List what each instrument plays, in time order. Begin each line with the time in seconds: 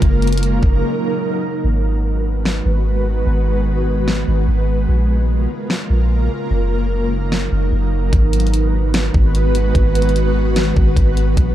Already playing: ambient pad C#3 A#3
0.02 808-style bass F#1, ambient pad F#3 D#4 A#4, kick, closed hi-hat
0.22 closed hi-hat
0.27 closed hi-hat
0.32 closed hi-hat
0.38 closed hi-hat
0.43 closed hi-hat
0.63 808-style bass F#1, kick
1.64 808-style bass G#1, ambient pad D#3 G#3 B3 F#4 B4
2.46 snare
2.66 808-style bass G#1
3.26 808-style bass G#1
4.08 snare
4.28 808-style bass G#1
4.48 808-style bass G#1
4.89 808-style bass A#1, ambient pad C#3 A#3 F4 A#4
5.70 snare
5.90 808-style bass A#1
6.51 808-style bass F#1, ambient pad F#3 D#4
7.32 snare
7.52 808-style bass F#1
7.72 808-style bass F#1
8.13 808-style bass G#1, ambient pad D#3 G#3 B3 F#4 B4, kick, closed hi-hat
8.33 closed hi-hat
8.40 closed hi-hat
8.47 closed hi-hat
8.54 closed hi-hat
8.94 snare, closed hi-hat
9.14 808-style bass G#1, kick
9.35 closed hi-hat
9.55 closed hi-hat
9.75 808-style bass G#1, kick, closed hi-hat
9.95 closed hi-hat
10.02 closed hi-hat
10.09 closed hi-hat
10.16 closed hi-hat
10.56 snare, closed hi-hat
10.77 808-style bass G#1, kick
10.97 808-style bass G#1, kick, closed hi-hat
11.17 closed hi-hat
11.37 808-style bass A#1, kick, closed hi-hat